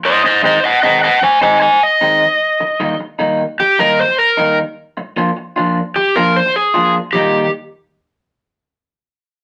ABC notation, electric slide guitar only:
X:1
M:4/4
L:1/8
Q:"Swing" 1/4=101
K:Eb
V:1 name="Electric slide guitar"
(3[ce] [ce] [ce] (3[e_g] [eg] [eg] (3[ca] [ca] [ca] e2- | e2 z2 (3G B c B z | z4 (3G B c A z | G z6 z |]